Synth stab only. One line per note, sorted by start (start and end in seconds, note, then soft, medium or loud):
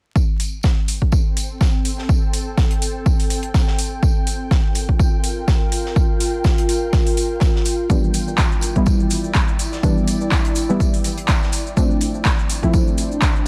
7.89 8.72 E3 medium
7.89 8.73 G3 medium
7.89 8.73 B3 medium
7.89 8.73 D4 medium
8.75 9.80 E3 medium
8.75 9.81 G3 medium
8.75 9.81 B3 medium
8.75 9.81 E4 loud
9.83 10.66 E3 medium
9.83 10.66 G3 medium
9.83 10.66 B3 medium
9.83 10.67 D4 medium
10.69 11.51 E3 medium
10.69 11.51 G3 medium
10.69 11.52 B3 medium
10.69 11.52 E4 loud
11.76 12.60 F3 medium
11.76 12.60 A3 medium
11.76 12.60 C4 medium
11.76 12.60 D4 medium
12.62 13.48 F3 medium
12.62 13.48 A3 medium
12.62 13.48 C4 medium
12.62 13.48 E4 loud